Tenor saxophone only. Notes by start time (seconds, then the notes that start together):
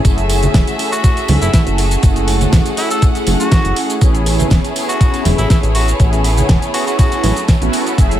0.92 F#4
1.41 E4
1.54 E4
2.78 E4
2.91 A4
3.40 F#4
4.89 F#4
5.38 E4
5.50 E4
5.75 F#4
6.74 F#4
6.87 F#4
6.99 F#4